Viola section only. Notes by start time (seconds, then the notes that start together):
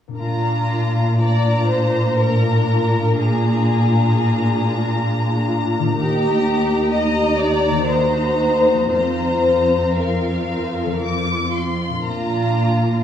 0.19 D4 F4
1.20 D4 F4
2.19 D4 F4
3.15 D4 F4
5.97 D#4 G4
6.91 D#4 G4
7.86 D#4 F#4
8.91 C4 F4
9.95 C4 F4
11.02 C4 F4
12.07 D4 F4